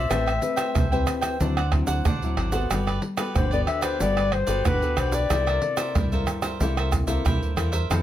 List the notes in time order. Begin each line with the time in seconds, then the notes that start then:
Already playing: E5
0.09 A1 A3 C4 G4 A4 B4 C5 E5 G5, pandeiro, tamborim, shaker, surdo
0.26 C5 E5 G5, pandeiro, tamborim, shaker
0.41 C4 G4 B4, muted cavaquinho stroke, pandeiro, shaker
0.56 C5 E5 G5, pandeiro, tamborim, shaker
0.75 C2 E3 A4 C5 E5 G5, pandeiro, tamborim, shaker, surdo
0.92 C4 G4 B4 C5 E5 G5, pandeiro, shaker
1.07 pandeiro, tamborim, shaker
1.21 C5 E5 G5, pandeiro, tamborim, shaker
1.40 D2 D3 F#3 C4 D4 E4 C5 D5 F#5, pandeiro, shaker, surdo
1.57 C5 D5 F#5, pandeiro, tamborim, shaker
1.72 F#3 C4 E4, muted cavaquinho stroke, pandeiro, tamborim, surdo
1.87 D2 C5 D5 F#5, pandeiro, shaker
2.05 D2 A2 D4 C5 D5 F#5, pandeiro, tamborim, shaker, surdo
2.22 F#3 C4 E4, pandeiro, shaker
2.37 G#1 D4 C5 D5 F#5, pandeiro, tamborim
2.52 B3 F#4 A4 C5 D5 F#5, pandeiro, shaker
2.70 G1 G3 F#4 G4 B4 D5, pandeiro, tamborim, shaker, surdo
2.87 G4 B4 D5, pandeiro, tamborim, shaker
3.02 muted cavaquinho stroke, pandeiro
3.17 B3 F#4 G4 A4 B4 D5, pandeiro, tamborim, shaker
3.34 G1 D3 F#4 G4 B4 C5 D5, pandeiro, tamborim, shaker, surdo
3.51 B3 F#4 G4 A4 B4 D5, pandeiro, shaker
3.67 E5, pandeiro, tamborim
3.81 G4 B4 C5 D5, pandeiro, tamborim, shaker
4.00 G1 G3 B3 F#4 G4 A4 B4 D5, pandeiro, shaker, surdo
4.17 G4 B4 D5, pandeiro, tamborim, shaker
4.32 C5, muted cavaquinho stroke, pandeiro, tamborim
4.47 G1 B3 F#4 G4 A4 B4 D5, pandeiro, shaker
4.65 G1 D3 F#4 G4 B4 D5, pandeiro, tamborim, shaker, surdo
4.82 B3 F#4 A4, pandeiro, shaker
4.97 B1 F#4 G4 B4 C5 D5, pandeiro, tamborim, shaker
5.11 G4 B4 D5, pandeiro, shaker
5.30 C2 C3 A#3 E4 A4 A#4 C5 E5, pandeiro, tamborim, shaker, surdo
5.46 A#4 C5 E5, pandeiro, tamborim, shaker
5.62 A#3 E4 A4, muted cavaquinho stroke, pandeiro
5.77 A#4 C5 E5, pandeiro, tamborim, shaker
5.95 C2 G2 E4 A#4 C5 E5, pandeiro, tamborim, shaker, surdo
6.12 A#3 E4 A4 A#4 C5 E5, pandeiro, shaker
6.27 pandeiro, tamborim, shaker
6.42 A#4 C5 E5, pandeiro, tamborim, shaker
6.60 C2 C3 A#3 E4 A4 A#4 C5 E5, pandeiro, shaker, surdo
6.77 A#4 C5 E5, pandeiro, tamborim, shaker
6.92 pandeiro, tamborim, shaker, surdo
7.07 C2 A#3 E4 A4 A#4 C5 E5, pandeiro, shaker
7.25 C2 G2 E4 A#4 C5 E5, pandeiro, tamborim, shaker, surdo
7.43 pandeiro, shaker
7.56 E2 A#3 E4 A4 A#4 C5 E5, pandeiro, tamborim, shaker
7.72 A#4 C5 E5, pandeiro, shaker
7.90 F2 F3 C4 E4 A4 C5 F5, pandeiro, tamborim, shaker, surdo